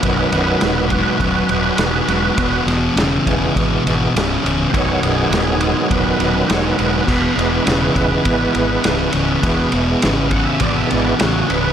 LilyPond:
<<
  \new Staff \with { instrumentName = "Tonewheel organ" } { \time 4/4 \key e \lydian \tempo 4 = 102 b'16 <ais' b'>4~ <ais' b'>16 <fis' b'>2~ <fis' b'>8~ | <fis' b'>8 r2. r8 | <c'' cis''>8 gis'4. b'4 <c'' cis''>16 b'8.~ | b'16 <ais' b'>4~ <ais' b'>16 b'2~ b'8~ |
b'8 r4 <eis'' fis''>16 e''16 d''16 e''16 d''16 b'16 fis'8 b'8 | }
  \new Staff \with { instrumentName = "Tonewheel organ" } { \clef bass \time 4/4 \key e \lydian <dis fis b>4. r2 r8 | r4. <e gis b>4. r4 | <dis fis b>1 | r8 <e gis b>2~ <e gis b>8 <e gis b>8 r8 |
<e gis b>4. r4 <e gis b>8 r4 | }
  \new Staff \with { instrumentName = "Distorted electric guitar" } { \clef bass \time 4/4 \key e \lydian <b,, fis,>8 <b,, fis,>8 <b,, gis,>8 <b,, gis,>8 <b,, fis,>8 <b,, fis,>8 <b,, gis,>8 <b,, gis,>8 | <e, b,>8 <e, b,>8 <e, cis>8 <e, cis>8 <e, b,>8 <e, b,>8 <e, cis>8 <e, cis>8 | <b,, fis,>8 <b,, fis,>8 <b,, gis,>8 <b,, gis,>8 <b,, fis,>8 <b,, fis,>8 <b,, gis,>8 <b,, gis,>8 | <e, b,>8 <e, b,>8 <e, cis>8 <e, cis>8 <e, b,>8 <e, b,>8 <e, cis>8 <e, cis>8 |
<e, b,>8 <e, b,>8 <e, cis>8 <e, cis>8 <e, b,>8 <e, b,>8 <e, cis>8 <e, cis>8 | }
  \new Staff \with { instrumentName = "Fingered electric bass" } { \clef bass \time 4/4 \key e \lydian b,,,8 b,,,8 dis,,4 dis,,8 dis,,8 e,,8 e,,8 | e,,8 e,,8 e,,8 e,,8 gis,,8 gis,,8 cis,,8 cis,,8 | b,,,8 b,,,8 dis,,4 dis,,8 dis,,8 e,,8 e,,8 | e,,8 e,,8 e,,8 e,,8 gis,,8 gis,,8 cis,,8 cis,,8 |
e,,8 e,,8 gis,,4 gis,,8 gis,,8 a,,8 cis,,8 | }
  \new DrumStaff \with { instrumentName = "Drums" } \drummode { \time 4/4 <bd cymr>8 cymr8 <cymr sn>8 <bd cymr>8 <bd cymr>8 cymr8 <cymr sn>8 cymr8 | <bd cymr>8 <cymr sn>8 <cymr sn>8 <bd cymr>8 <bd cymr>8 cymr8 <cymr sn>8 cymr8 | <bd cymr>8 cymr8 <cymr sn>8 cymr8 <bd cymr>8 cymr8 <cymr sn>8 cymr8 | <cymc bd>8 cymr8 <cymr sn>8 <bd cymr>8 <bd cymr>8 cymr8 <cymr sn>8 cymr8 |
<bd cymr>8 cymr8 <cymr sn>8 <bd cymr>8 <bd cymr>8 cymr8 <cymr sn>8 cymr8 | }
>>